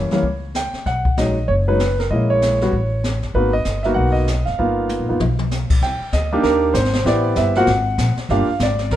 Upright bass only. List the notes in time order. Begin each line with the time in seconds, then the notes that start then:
0.11 muted upright bass stroke
0.23 C#2
0.73 muted upright bass stroke
0.86 B1
1.17 A#1
1.48 F#1
2.11 A#1
2.73 A1
3.23 G1
3.34 G#1
3.65 G1
3.96 B1
4.47 F#1
4.58 G1
4.99 A#1
5.10 F#1
5.20 B1
5.70 A#1
5.82 C2
6.00 muted upright bass stroke
6.13 D2
6.43 D#2
6.75 G#1
7.05 A1
7.36 G1
7.67 G#1
7.98 A#1
8.17 muted upright bass stroke
8.29 G1
8.48 muted upright bass stroke
8.60 G#1
8.91 A#1